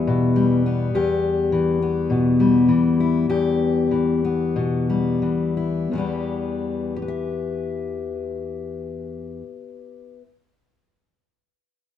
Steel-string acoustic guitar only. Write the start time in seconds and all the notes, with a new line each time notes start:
Already playing: E2 E3 G3 B3 G4
0.07 B2
0.36 G3
0.66 B3
0.95 E2 G4
1.52 E3
1.82 B3
2.10 B2
2.40 G3
2.68 E3
3.00 E4
3.29 E2 G4
3.91 E3
4.25 B3
4.56 B2
4.90 G3
5.22 E3
5.57 E4
5.91 E2 E3 G3
5.98 B3 G4
6.96 G4
7.02 B4
7.08 E5